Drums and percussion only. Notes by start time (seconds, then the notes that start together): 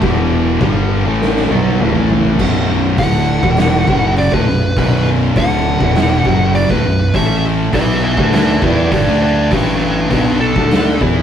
0.02 kick, crash
0.61 kick, crash
1.22 snare
1.36 snare
1.50 high tom
1.66 high tom
1.80 mid tom
1.95 mid tom
2.10 floor tom
2.24 floor tom
2.39 kick, crash
2.98 kick, open hi-hat
3.43 kick
3.57 snare, open hi-hat
3.88 kick
4.17 open hi-hat
4.32 kick
4.48 snare
4.77 kick, open hi-hat
5.36 kick, open hi-hat
5.80 kick
5.95 snare, open hi-hat
6.25 kick
6.55 open hi-hat
6.70 kick
7.14 kick, open hi-hat
7.73 kick, open hi-hat
8.17 kick
8.33 snare, open hi-hat
8.62 kick
8.92 kick, open hi-hat
9.51 kick, open hi-hat
10.11 kick, open hi-hat
10.56 kick
10.71 snare, open hi-hat
11.01 kick